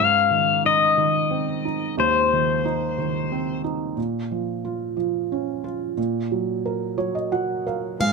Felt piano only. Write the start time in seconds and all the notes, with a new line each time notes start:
Already playing: G#2
0.31 D#3
0.64 D#4
0.97 D#3
1.31 C4
1.65 D#4
1.97 D#2
2.33 D#3
2.65 D#4
2.98 D#3
3.32 C4
3.64 D#4
3.97 A#2
4.31 F3
4.65 F4
4.97 F3
5.32 C#4
5.64 F4
5.97 A#2
6.32 F#3
6.66 A#4
6.98 F#3 C#5
7.15 D#5
7.32 F#4 F#5
7.67 A#4 F5
8.00 G#3